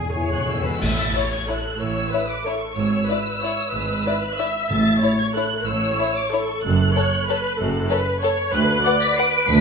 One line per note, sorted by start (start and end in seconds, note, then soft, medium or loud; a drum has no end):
0.00 0.15 G#4 medium
0.00 0.63 G#4 medium
0.00 0.29 G#5 medium
0.00 0.63 G#5 medium
0.05 0.12 E2 medium
0.13 0.20 E2 medium
0.13 0.28 B3 soft
0.13 0.28 E4 soft
0.13 0.67 C#5 medium
0.21 0.28 E2 medium
0.29 0.36 E2 medium
0.29 0.49 F#6 medium
0.37 0.45 E2 medium
0.46 0.52 E2 medium
0.46 0.61 E4 soft
0.50 0.59 E2 medium
0.50 0.62 B3 soft
0.50 0.83 E6 medium
0.61 0.67 E2 medium
0.67 0.76 E2 medium
0.67 0.83 B4 medium
0.82 1.10 A1 medium
0.82 1.10 A2 medium
0.82 1.14 E5 medium
0.82 1.32 A6 medium
0.82 concert bass drum medium
0.82 crash medium
1.15 1.24 E4 medium
1.15 1.23 C#5 soft
1.15 1.50 C#5 medium
1.32 1.49 G#6 medium
1.49 1.57 E4 medium
1.49 1.81 A4 medium
1.49 1.57 C#5 soft
1.49 1.80 F#6 medium
1.80 2.07 A1 medium
1.80 2.07 A2 medium
1.80 2.12 C#5 medium
1.80 2.29 E6 medium
2.12 2.21 E4 medium
2.12 2.46 B4 medium
2.12 2.21 C#5 medium
2.30 2.46 D6 medium
2.45 2.54 E4 soft
2.45 2.77 A4 medium
2.45 2.54 C#5 medium
2.45 2.77 C#6 medium
2.77 3.04 G#1 medium
2.77 3.04 G#2 medium
2.77 3.09 C#5 medium
2.77 4.23 E6 medium
3.09 3.17 E4 medium
3.09 3.42 B4 medium
3.09 3.17 D5 medium
3.42 3.51 E4 medium
3.42 3.74 C#5 medium
3.42 3.51 D5 medium
3.74 4.01 G#1 medium
3.74 4.01 G#2 medium
3.74 4.38 B4 medium
4.06 4.14 E4 medium
4.06 4.14 D5 medium
4.22 4.39 F#6 medium
4.39 4.47 E4 medium
4.39 4.47 D5 medium
4.39 5.03 E5 medium
4.39 4.71 E6 medium
4.70 4.97 A1 medium
4.70 5.16 A2 medium
4.70 4.98 A2 medium
4.70 5.19 A6 loud
5.03 5.11 E4 medium
5.03 5.35 C#5 medium
5.03 5.11 C#5 medium
5.19 5.26 G#6 medium
5.35 5.44 E4 medium
5.35 5.67 A4 medium
5.35 5.44 C#5 medium
5.35 5.66 F#6 loud
5.66 5.94 A1 medium
5.66 5.94 A2 medium
5.66 6.32 C#5 medium
5.66 6.15 E6 loud
5.99 6.07 E4 medium
5.99 6.07 C#5 medium
6.15 6.32 D6 medium
6.31 6.40 E4 medium
6.31 6.96 A4 medium
6.31 6.40 C#5 medium
6.31 6.64 C#6 medium
6.63 6.90 F#1 medium
6.63 6.91 F#2 medium
6.63 8.04 F#6 loud
6.95 7.04 A4 medium
6.95 7.28 C#5 medium
6.95 7.04 C#5 medium
7.28 7.37 A4 medium
7.28 7.59 B4 medium
7.28 7.37 C#5 medium
7.58 7.85 F#1 medium
7.58 7.85 F#2 medium
7.58 7.90 A4 medium
7.90 7.98 A4 medium
7.90 8.23 B4 medium
7.90 7.98 C#5 medium
8.23 8.31 A4 medium
8.23 8.53 C#5 medium
8.23 8.31 C#5 medium
8.53 8.80 D2 loud
8.53 8.80 D2 medium
8.53 8.85 B4 loud
8.53 8.98 F#6 loud
8.84 8.93 B4 medium
8.84 9.17 D5 loud
8.84 8.93 F#5 medium
9.01 9.17 B6 loud
9.17 9.61 B4 loud
9.17 9.26 B4 medium
9.17 9.26 F#5 medium
9.17 9.48 D7 loud
9.48 9.61 D2 loud
9.48 9.61 B6 loud